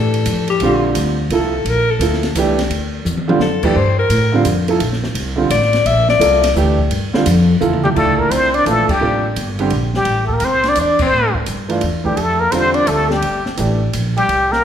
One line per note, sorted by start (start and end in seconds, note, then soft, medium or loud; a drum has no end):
0.00 0.25 A2 loud
0.00 0.54 E3 medium
0.00 0.54 A3 medium
0.00 0.55 D4 medium
0.00 0.55 G4 medium
0.00 0.46 A4 medium
0.14 ride medium
0.26 0.60 F2 loud
0.26 hi-hat pedal medium
0.26 ride medium
0.48 0.94 G4 medium
0.48 ride soft
0.60 0.95 A#1 medium
0.60 1.15 D3 medium
0.60 1.16 G3 medium
0.60 1.16 C4 medium
0.60 1.16 F4 medium
0.60 ride medium
0.95 1.30 D2 loud
0.95 hi-hat pedal medium
0.95 ride medium
1.30 1.64 C2 loud
1.30 1.52 F3 medium
1.30 1.52 A#3 medium
1.30 1.53 E4 medium
1.30 1.53 A4 medium
1.30 ride medium
1.35 1.71 A4 medium
1.65 1.99 A#1 medium
1.65 ride medium
1.70 1.92 A#4 loud
1.91 2.37 A4 medium
1.99 2.34 D2 loud
1.99 2.22 F3 medium
1.99 2.22 A#3 medium
1.99 2.22 E4 medium
1.99 2.23 A4 medium
1.99 hi-hat pedal medium
1.99 ride medium
2.13 snare soft
2.23 snare medium
2.23 ride soft
2.35 2.69 C2 medium
2.35 2.57 E3 medium
2.35 2.57 A3 medium
2.35 2.57 D4 medium
2.35 2.58 G4 loud
2.35 hi-hat pedal medium
2.35 ride medium
2.59 snare medium
2.59 ride medium
2.69 3.04 D2 medium
2.69 ride medium
3.05 3.39 E2 medium
3.05 hi-hat pedal medium
3.05 high tom medium
3.17 high tom medium
3.28 3.39 D3 medium
3.28 3.40 G3 medium
3.28 3.40 C4 medium
3.28 3.40 F4 loud
3.28 high tom medium
3.39 3.74 F#2 medium
3.39 3.78 A4 medium
3.39 snare medium
3.63 3.75 E3 medium
3.63 3.75 A3 medium
3.63 3.75 D4 medium
3.63 3.75 G4 loud
3.63 kick medium
3.63 crash medium
3.76 4.09 G2 medium
3.76 3.98 C5 medium
3.99 4.43 A#4 loud
4.10 4.44 A2 medium
4.10 hi-hat pedal medium
4.10 ride medium
4.32 4.44 D3 medium
4.32 4.45 G3 medium
4.32 4.45 C4 medium
4.32 4.45 F4 medium
4.45 4.80 F2 medium
4.45 hi-hat pedal medium
4.45 ride medium
4.68 4.80 F3 medium
4.68 4.80 A#3 medium
4.68 4.80 E4 medium
4.68 4.81 A4 medium
4.68 ride soft
4.80 5.14 A#1 medium
4.80 ride medium
4.93 snare soft
5.04 snare medium
5.14 5.49 C2 loud
5.14 ride medium
5.36 5.48 D3 medium
5.36 5.49 G3 medium
5.36 5.49 C4 medium
5.36 5.49 F4 medium
5.50 5.84 A1 loud
5.50 5.88 D5 loud
5.50 hi-hat pedal medium
5.50 ride medium
5.62 snare soft
5.73 snare medium
5.73 ride medium
5.85 6.19 A#1 medium
5.85 6.09 E5 loud
5.85 ride medium
6.09 6.53 D5 loud
6.09 snare medium
6.19 6.54 C2 loud
6.19 6.41 F3 medium
6.19 6.41 A#3 medium
6.19 6.41 E4 medium
6.19 6.42 A4 medium
6.19 hi-hat pedal medium
6.19 ride medium
6.44 snare medium
6.44 ride medium
6.55 6.90 D2 loud
6.55 6.76 E3 medium
6.55 6.77 A3 medium
6.55 6.77 D4 medium
6.55 6.77 G4 medium
6.55 hi-hat pedal medium
6.79 kick medium
6.90 7.12 G2 medium
6.90 ride medium
7.13 7.25 D3 medium
7.13 7.25 G3 medium
7.13 7.25 C4 medium
7.13 7.25 F4 medium
7.13 muted upright bass stroke soft
7.13 snare medium
7.26 7.60 F2 loud
7.26 hi-hat pedal medium
7.26 ride medium
7.60 7.95 E2 loud
7.60 7.96 A#3 medium
7.60 7.94 E4 medium
7.60 7.95 F4 medium
7.60 7.96 A4 medium
7.60 hi-hat pedal medium
7.60 mid tom medium
7.73 mid tom medium
7.83 7.90 G3 medium
7.83 7.89 G4 medium
7.83 mid tom loud
7.95 8.30 D2 medium
7.95 8.49 A3 medium
7.95 8.20 A3 medium
7.95 8.50 D4 medium
7.95 8.49 E4 medium
7.95 8.50 F4 medium
7.95 8.21 A4 medium
7.95 kick medium
7.95 crash medium
8.18 8.32 A#3 medium
8.18 8.32 A#4 medium
8.18 kick medium
8.30 8.65 C2 medium
8.30 8.57 C4 medium
8.30 8.56 C5 medium
8.30 hi-hat pedal medium
8.30 ride medium
8.54 8.67 D4 medium
8.54 8.66 D5 medium
8.54 ride soft
8.65 8.87 A#1 medium
8.65 8.86 E3 medium
8.65 8.86 A3 medium
8.65 8.87 D4 medium
8.65 8.87 F4 medium
8.65 8.92 A4 medium
8.65 hi-hat pedal medium
8.65 ride medium
8.70 8.95 A3 medium
8.89 9.25 G4 medium
8.89 muted upright bass stroke soft
8.89 kick medium
8.89 crash medium
8.94 9.26 G3 medium
9.01 9.35 A1 medium
9.01 9.22 C3 medium
9.01 9.22 F3 medium
9.01 9.22 A#3 medium
9.01 9.22 D4 medium
9.36 9.71 G1 medium
9.36 hi-hat pedal medium
9.36 ride medium
9.59 9.70 D3 medium
9.59 9.71 G3 medium
9.59 9.71 C4 medium
9.59 9.71 G4 medium
9.59 ride soft
9.70 10.05 A#1 medium
9.70 ride medium
9.94 10.22 G3 medium
9.94 10.23 G4 medium
9.94 snare soft
10.05 10.40 A1 medium
10.05 ride medium
10.24 10.32 A3 medium
10.24 10.35 A4 medium
10.29 10.46 A#3 medium
10.29 kick medium
10.33 10.46 A#4 medium
10.40 10.76 C2 medium
10.40 hi-hat pedal medium
10.40 ride medium
10.44 10.67 C4 medium
10.44 10.70 C5 loud
10.64 10.78 D4 medium
10.64 snare soft
10.64 ride soft
10.69 10.79 D5 loud
10.75 11.11 E2 medium
10.75 10.99 D4 medium
10.75 hi-hat pedal medium
10.75 ride medium
10.81 11.01 D5 medium
10.99 11.34 C4 medium
10.99 kick medium
10.99 crash medium
11.06 11.36 C5 medium
11.13 11.47 A2 medium
11.35 kick medium
11.46 11.82 G2 medium
11.46 hi-hat pedal medium
11.46 ride medium
11.68 11.80 E3 medium
11.68 11.81 A3 medium
11.68 11.81 D4 medium
11.68 11.81 F4 medium
11.68 ride soft
11.81 12.17 E2 medium
11.81 ride medium
12.04 12.16 E3 medium
12.04 12.20 G3 medium
12.04 12.16 A3 medium
12.04 12.16 D4 medium
12.04 12.17 G4 medium
12.04 12.19 G4 medium
12.04 kick soft
12.17 12.52 F2 medium
12.17 12.43 A3 medium
12.17 12.41 A4 medium
12.17 ride medium
12.40 12.53 A#3 medium
12.40 12.53 A#4 medium
12.51 12.87 E2 medium
12.51 13.05 D3 medium
12.51 13.06 G3 medium
12.51 12.76 C4 medium
12.51 13.06 C4 medium
12.51 13.06 F4 medium
12.51 12.76 C5 medium
12.51 hi-hat pedal medium
12.51 ride medium
12.74 12.88 D4 medium
12.74 12.89 D5 medium
12.74 ride soft
12.87 13.22 D2 medium
12.87 13.10 A3 medium
12.87 13.13 A4 medium
12.87 hi-hat pedal medium
12.87 ride medium
13.09 13.45 G3 medium
13.09 13.46 G4 medium
13.09 snare medium
13.22 13.45 G1 medium
13.22 ride medium
13.46 muted upright bass stroke soft
13.46 snare soft
13.57 13.93 A1 medium
13.57 13.78 E3 medium
13.57 13.79 A3 medium
13.57 13.79 D4 medium
13.57 13.80 G4 medium
13.57 hi-hat pedal medium
13.57 ride medium
13.93 14.28 A#1 medium
13.93 hi-hat pedal medium
13.93 ride medium
14.17 14.55 G3 medium
14.17 14.53 G4 medium
14.17 ride soft
14.29 14.63 C2 medium
14.29 ride medium
14.52 14.64 A#3 medium
14.52 14.64 A#4 medium
14.52 snare soft